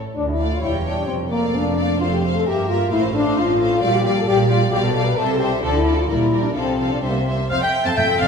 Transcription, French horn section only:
0.15 0.27 D4 medium
0.28 0.51 E4 medium
0.50 0.62 F4 medium
0.61 0.72 E4 medium
0.85 1.08 D4 medium
1.07 1.18 C4 medium
1.30 1.53 A#3 medium
1.54 2.00 D4 medium
2.00 2.06 F4 medium
2.13 2.23 G4 medium
2.36 2.47 A4 medium
2.46 2.69 G4 medium
2.68 2.91 F4 medium
2.92 3.02 E4 medium
3.15 3.37 D4 medium
3.38 3.82 F4 medium
3.83 3.94 F4 medium
3.94 4.16 G4 medium
4.17 4.27 A4 medium
4.28 4.38 G4 medium
4.50 4.60 F4 medium
4.72 4.77 G4 medium
4.84 5.06 A4 medium
5.06 5.17 B4 medium
5.15 5.39 A4 medium
5.39 5.49 G4 medium
5.60 5.73 D4 medium
5.74 5.96 E4 medium
5.97 6.08 F4 medium
6.08 6.43 E4 medium
6.43 6.49 D4 medium
6.56 6.89 C4 medium
6.90 6.99 D4 soft
7.00 7.09 C4 soft
7.09 7.18 A#3 soft
7.19 7.28 C4 soft
7.97 8.28 A4 medium

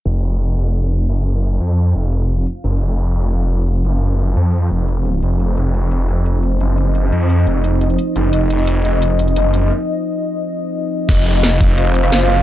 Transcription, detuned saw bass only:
0.05 0.56 F1 medium
0.57 1.07 F1 medium
1.09 1.59 F#1 loud
1.61 1.94 F2 medium
1.95 2.45 F1 loud
2.64 2.80 F#1 medium
2.81 3.32 F1 medium
3.33 3.83 F1 loud
3.85 4.35 F#1 loud
4.36 4.70 F2 loud
4.71 5.21 F1 medium
5.23 5.56 F1 medium
5.57 6.07 F1 medium
6.09 6.59 F1 medium
6.61 7.11 F#1 loud
7.12 7.45 F2 medium
7.47 7.97 F1 loud
8.16 8.32 F#1 medium
8.33 8.83 F1 medium
8.85 9.35 F1 loud
9.36 9.71 F#1 loud
11.09 11.59 F1 medium
11.61 12.11 F1 medium
12.12 12.43 F#1 loud

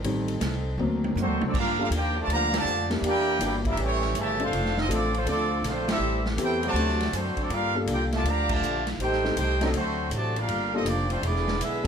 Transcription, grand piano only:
0.04 0.32 D#3 medium
0.04 0.33 G3 medium
0.04 0.33 C4 medium
0.79 1.50 F#3 medium
0.79 1.50 A#3 medium
0.79 1.50 C4 medium
1.79 1.90 A#3 medium
1.79 1.90 D4 medium
1.79 1.90 F4 medium
1.79 1.90 G4 medium
1.79 1.90 A4 medium
2.90 3.37 A#3 medium
2.90 3.37 D4 medium
2.90 3.37 E4 medium
2.90 3.37 G4 medium
2.90 3.37 A#4 medium
3.40 3.62 A#3 medium
3.40 3.62 D4 medium
3.40 3.62 E4 medium
3.40 3.62 F#4 medium
3.40 3.62 G4 medium
4.40 4.51 A3 medium
4.40 4.51 C4 medium
4.40 4.51 D4 medium
4.40 4.51 F4 medium
4.40 4.51 A4 medium
4.89 5.10 A3 medium
4.89 5.10 C4 medium
4.89 5.10 D4 medium
4.89 5.11 F4 medium
4.89 5.11 A4 medium
5.26 5.48 A3 medium
5.26 5.48 C4 medium
5.26 5.48 D4 medium
5.26 5.48 F4 medium
5.26 5.48 A4 medium
6.37 6.59 B3 medium
6.37 6.59 C4 medium
6.37 6.60 E4 medium
6.37 6.60 G4 medium
6.37 6.60 A4 medium
6.75 6.97 A3 medium
6.75 6.97 C4 medium
6.75 6.97 D4 medium
6.75 6.97 F#4 medium
6.75 6.97 C5 medium
7.75 8.22 A#3 medium
7.75 8.22 D4 medium
7.75 8.22 F4 medium
7.75 8.22 G4 medium
7.75 8.22 A4 medium
9.24 9.35 A3 medium
9.24 9.35 C4 medium
9.24 9.35 D#4 medium
9.24 9.36 G4 medium
9.24 9.36 A4 medium
9.62 9.73 A3 medium
9.62 9.73 C4 medium
9.62 9.73 D4 medium
9.62 9.73 F#4 medium
9.62 9.73 A4 loud
10.74 10.85 A#3 medium
10.74 10.85 D4 medium
10.74 10.85 F4 medium
10.74 10.85 G4 medium
10.74 10.85 A4 loud
11.84 11.87 A3 medium
11.84 11.87 D#4 medium

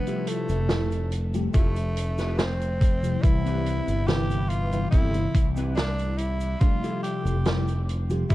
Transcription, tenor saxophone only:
0.00 0.29 B3 loud
0.28 1.12 A3 medium
1.54 2.40 A3 loud
2.38 3.24 C4 loud
3.22 4.08 E4 loud
4.07 4.51 G4 loud
4.49 4.90 F4 loud
4.91 5.46 E4 loud
5.76 6.19 D4 loud
6.18 6.62 E4 loud
6.60 7.02 F4 loud
7.03 7.84 G4 loud
8.30 8.35 E4 loud

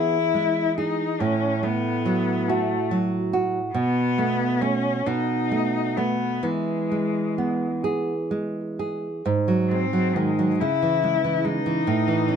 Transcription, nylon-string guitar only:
0.00 1.17 E3 soft
0.00 0.17 B3 soft
0.00 0.61 G#4 soft
0.34 1.04 G#3 soft
0.78 1.21 G#4 soft
1.20 3.70 A2 soft
1.63 2.32 A3 soft
2.06 2.74 F#3 soft
2.49 3.17 F#4 soft
2.91 3.58 F#3 soft
3.33 3.75 F#4 soft
3.74 5.01 B2 soft
4.18 4.60 A3 soft
4.61 5.01 A3 soft
4.61 5.02 C#4 soft
5.06 6.40 B2 soft
5.51 5.96 A3 soft
5.97 6.40 A3 soft
5.97 6.40 B3 soft
6.43 9.21 E3 soft
6.92 7.66 G#3 soft
7.38 8.13 B3 soft
7.84 8.60 G#4 soft
8.31 9.07 G#3 soft
8.79 9.26 G#4 soft
9.26 10.57 G#2 soft
9.48 9.84 F#3 soft
9.71 10.07 G#3 soft
9.93 10.30 F#3 soft
10.16 10.52 D#3 soft
10.39 10.61 F#3 soft
10.61 11.84 C#3 soft
10.82 11.16 E3 soft
11.04 11.37 G#3 soft
11.24 11.58 E3 soft
11.45 11.79 G#3 soft
11.66 11.87 E3 soft
11.87 12.36 A2 soft
12.08 12.36 E3 soft
12.29 12.36 C#4 soft

